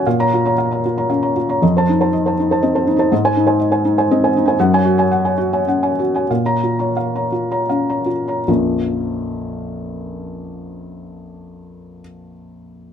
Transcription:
0.07 1.59 A#2 medium
0.07 0.27 F5 medium
0.19 0.30 C#5 soft
0.19 0.31 A#5 medium
0.34 0.53 F4 soft
0.45 0.56 C#5 soft
0.45 0.57 A#5 soft
0.58 0.78 F5 soft
0.71 0.82 C#5 soft
0.71 0.83 A#5 soft
0.85 1.05 F4 soft
0.98 1.09 C#5 soft
0.98 1.09 A#5 soft
1.10 1.38 C#4 soft
1.10 1.31 F5 soft
1.23 1.35 C#5 soft
1.23 1.35 A#5 soft
1.36 1.57 F4 soft
1.49 1.61 C#5 soft
1.49 1.61 A#5 soft
1.62 3.07 F2 medium
1.62 1.83 D#5 medium
1.77 1.88 C5 soft
1.77 1.88 A5 medium
1.89 2.09 D#4 medium
2.01 2.12 C5 soft
2.01 2.12 A5 soft
2.13 2.33 D#5 soft
2.26 2.37 C5 soft
2.26 2.38 A5 soft
2.40 2.58 D#4 soft
2.51 2.62 C5 soft
2.51 2.62 A5 soft
2.62 2.89 C4 soft
2.62 2.82 D#5 medium
2.75 2.86 C5 soft
2.75 2.86 A5 soft
2.87 2.95 D#4 soft
2.96 3.12 D#4 soft
2.96 3.10 C5 soft
2.96 3.10 A5 medium
3.12 4.53 G#2 medium
3.12 3.31 D#5 medium
3.25 3.35 C5 medium
3.25 3.35 G#5 medium
3.37 3.55 D#4 medium
3.47 3.58 C5 medium
3.47 3.58 G#5 medium
3.60 3.79 D#5 soft
3.72 3.82 C5 soft
3.72 3.82 G#5 soft
3.85 4.03 D#4 soft
3.98 4.08 C5 soft
3.98 4.08 G#5 medium
4.11 4.35 C4 soft
4.11 4.29 D#5 medium
4.24 4.33 C5 soft
4.24 4.33 G#5 medium
4.37 4.44 D#4 medium
4.46 4.59 D#4 soft
4.46 4.57 C5 soft
4.46 4.57 G#5 medium
4.59 6.26 F#2 medium
4.59 4.78 F#5 medium
4.73 4.83 C#5 medium
4.73 4.83 G#5 medium
4.85 5.04 F#4 medium
4.98 5.08 C#5 medium
4.98 5.09 G#5 medium
5.11 5.32 F#5 medium
5.25 5.37 C#5 soft
5.25 5.36 G#5 soft
5.38 5.60 F#4 soft
5.53 5.65 C#5 soft
5.53 5.66 G#5 soft
5.67 5.99 C#4 soft
5.67 5.92 F#5 soft
5.83 5.96 C#5 soft
5.83 5.96 G#5 soft
5.99 6.23 F#4 soft
6.15 6.28 C#5 soft
6.15 6.29 G#5 soft
6.30 8.44 A#2 soft
6.30 6.56 F5 soft
6.45 6.60 C#5 soft
6.45 6.61 A#5 medium
6.64 6.90 F4 soft
6.79 6.95 C#5 soft
6.79 6.95 A#5 soft
6.97 7.25 F5 soft
7.16 7.31 C#5 soft
7.16 7.31 A#5 soft
7.32 7.62 F4 soft
7.51 7.68 C#5 soft
7.51 7.68 A#5 soft
7.69 8.11 C#4 soft
7.69 8.00 F5 soft
7.89 8.07 C#5 soft
7.89 8.07 A#5 soft
8.06 8.38 F4 soft
8.27 8.45 C#5 soft
8.27 8.45 A#5 soft
8.48 12.01 A#1 soft
8.48 12.01 F2 soft
8.48 12.01 F3 soft
8.48 12.01 A#3 soft
8.48 12.01 C#4 soft
8.48 12.01 F4 soft

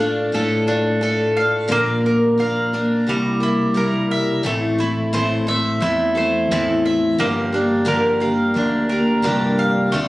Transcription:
0.00 0.29 A2 loud
0.00 1.70 A3 medium
0.00 0.31 A3 medium
0.00 0.67 D4 medium
0.00 0.33 D4 medium
0.00 0.34 F4 medium
0.00 0.33 A4 medium
0.00 1.35 F5 medium
0.32 1.67 A2 medium
0.32 0.67 A3 medium
0.32 0.68 D4 medium
0.32 0.67 F4 medium
0.32 1.01 A4 medium
0.32 0.66 A4 medium
0.67 1.00 A3 soft
0.67 1.77 D4 medium
0.67 1.02 D4 medium
0.67 1.01 F4 medium
0.67 1.01 A4 medium
1.01 1.68 A3 medium
1.01 1.68 D4 medium
1.01 1.69 F4 medium
1.01 1.77 A4 medium
1.01 1.69 A4 medium
1.37 1.71 F5 medium
1.68 2.37 A#2 medium
1.68 3.04 A#2 medium
1.68 2.38 D3 medium
1.68 2.36 F3 medium
1.68 2.38 A#3 medium
1.68 2.38 D4 medium
1.68 2.38 A#4 medium
1.72 3.08 A#3 medium
1.72 2.38 F5 medium
2.06 3.15 A#4 medium
2.38 2.72 F3 medium
2.38 2.73 A#3 medium
2.38 2.72 D4 medium
2.38 2.72 A#4 medium
2.38 3.14 F5 medium
2.73 3.06 F3 medium
2.73 3.06 A#3 medium
2.73 3.07 D4 medium
2.73 3.15 D4 medium
2.73 3.07 A#4 medium
3.07 4.41 C2 medium
3.07 3.41 G3 medium
3.07 4.46 G3 medium
3.07 3.41 A#3 medium
3.07 3.41 E4 medium
3.07 3.39 A#4 medium
3.40 3.74 A#3 medium
3.40 3.75 E4 medium
3.40 4.52 E4 medium
3.40 3.75 A#4 medium
3.74 4.43 G3 medium
3.74 4.44 A#3 medium
3.74 4.43 E4 medium
3.74 4.44 A#4 medium
3.74 4.52 A#4 medium
4.11 4.52 E5 medium
4.43 5.77 A1 loud
4.43 4.78 A2 medium
4.43 4.78 E3 medium
4.43 4.78 A3 medium
4.43 7.19 A3 medium
4.43 4.78 C4 medium
4.43 4.78 E4 medium
4.43 4.77 A4 loud
4.78 5.12 A3 soft
4.78 5.12 C4 soft
4.78 5.12 E4 medium
4.78 5.81 E4 medium
4.78 5.13 A4 medium
5.13 5.47 A2 medium
5.13 5.47 E3 medium
5.13 5.47 A3 loud
5.13 5.47 C4 medium
5.13 5.46 E4 medium
5.13 5.45 A4 medium
5.13 6.16 C5 medium
5.47 5.79 A3 medium
5.47 5.81 C4 medium
5.47 5.81 E4 medium
5.47 5.81 A4 medium
5.47 6.84 E5 medium
5.80 6.46 E2 loud
5.80 6.15 A3 medium
5.80 6.16 C4 medium
5.80 6.50 E4 medium
5.80 6.15 E4 medium
5.80 6.14 A4 medium
6.15 6.51 A3 soft
6.15 6.50 C4 soft
6.15 6.50 E4 medium
6.15 6.49 A4 medium
6.15 7.26 C5 medium
6.51 7.15 E2 medium
6.51 7.18 A2 medium
6.51 7.18 E3 medium
6.51 7.19 A3 medium
6.51 7.19 C4 medium
6.51 7.26 E4 medium
6.51 7.20 E4 medium
6.51 7.19 A4 medium
6.86 7.26 E5 medium
7.18 8.52 G1 loud
7.18 7.52 G2 medium
7.18 7.52 D3 medium
7.18 7.53 F3 medium
7.18 7.53 A#3 medium
7.18 9.92 A#3 medium
7.18 7.53 D4 medium
7.18 7.51 G4 loud
7.52 7.85 F3 soft
7.52 7.85 A#3 medium
7.52 7.85 D4 medium
7.52 8.56 D4 medium
7.52 7.86 G4 medium
7.85 8.20 G2 medium
7.85 8.20 D3 medium
7.85 8.20 F3 loud
7.85 8.20 A#3 medium
7.85 8.20 D4 medium
7.85 8.19 G4 loud
7.85 8.88 A#4 medium
8.20 8.53 F3 medium
8.20 8.54 A#3 soft
8.20 8.55 D4 medium
8.20 8.55 G4 medium
8.20 9.58 F5 medium
8.54 9.20 D2 loud
8.54 8.89 F3 medium
8.54 8.89 A#3 medium
8.54 8.90 D4 medium
8.54 9.23 D4 medium
8.54 8.89 G4 medium
8.89 9.22 F3 soft
8.89 9.23 A#3 medium
8.89 9.23 D4 medium
8.89 9.24 G4 medium
8.89 9.99 A#4 medium
9.22 9.89 C2 medium
9.22 9.91 G2 medium
9.22 9.91 D3 medium
9.22 9.92 F3 medium
9.22 9.92 A#3 medium
9.22 9.92 D4 medium
9.22 9.99 D4 medium
9.22 9.93 G4 loud
9.59 9.99 F5 medium
9.92 10.08 D2 loud
9.92 10.08 D3 medium
9.92 10.08 F3 medium
9.92 10.08 A3 medium
9.92 10.08 C4 medium
9.92 10.08 D4 medium
9.92 10.08 A4 medium

